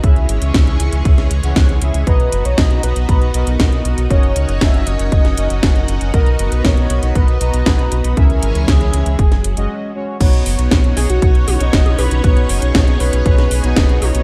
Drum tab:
CC |----------------|----------------|----------------|----------------|
HH |xxxxxxxxxxxxxxxx|xxxxxxxxxxxxxxxx|xxxxxxxxxxxxxxxx|xxxxxxxxxxxxxxxx|
SD |----o----o--o---|----o-------o---|----o----o--o---|----o-------o---|
T1 |----------------|----------------|----------------|----------------|
BD |o---o---o---o---|o---o---o---o---|o---o---o---o---|o---o---o---o---|

CC |----------------|x---------------|----------------|
HH |xxxxxxxxxxxx----|xxoxxxoxxxoxxxox|xxoxxxoxxxoxxxox|
SD |----o----o------|----o-o-----o---|----o----o--o---|
T1 |----------------|----------o--oo-|------------o-o-|
BD |o---o---o-------|o---o---o---o---|o---o---o---o---|